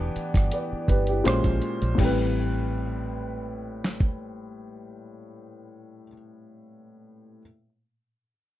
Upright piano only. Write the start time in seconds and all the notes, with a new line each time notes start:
Already playing: E3 B3 D4 G4
0.54 B4 D5
0.89 G4 B4
1.09 E4 G4
1.24 A#2 G#3 C#4 C5
1.95 A2 G3
2.01 C4 B4